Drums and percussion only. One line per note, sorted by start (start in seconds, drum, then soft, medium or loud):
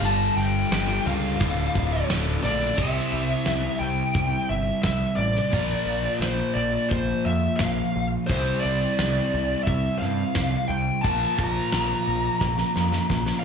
0.38 open hi-hat medium
0.72 snare loud
0.72 open hi-hat medium
1.06 open hi-hat medium
1.40 kick loud
1.40 open hi-hat medium
1.75 kick medium
1.75 open hi-hat medium
2.10 snare loud
2.10 open hi-hat medium
2.44 open hi-hat medium
2.61 snare soft
2.78 kick loud
2.78 crash medium
3.46 snare medium
3.46 closed hi-hat medium
4.14 kick loud
4.14 closed hi-hat medium
4.83 kick medium
4.83 snare loud
4.83 closed hi-hat medium
5.36 snare soft
5.53 kick medium
5.53 closed hi-hat medium
6.22 snare loud
6.22 closed hi-hat medium
6.91 kick medium
6.91 closed hi-hat medium
7.59 kick medium
7.59 snare loud
7.59 closed hi-hat medium
8.29 kick loud
8.29 closed hi-hat medium
8.99 snare loud
8.99 closed hi-hat medium
9.67 kick loud
9.67 closed hi-hat medium
10.02 snare soft
10.35 kick medium
10.35 snare loud
10.35 closed hi-hat medium
11.04 kick loud
11.04 closed hi-hat medium
11.39 kick medium
11.72 snare medium
11.72 closed hi-hat medium
12.41 kick loud
12.41 snare medium
12.58 snare soft
12.76 snare medium
12.92 snare medium
13.10 kick medium
13.10 snare medium
13.26 snare medium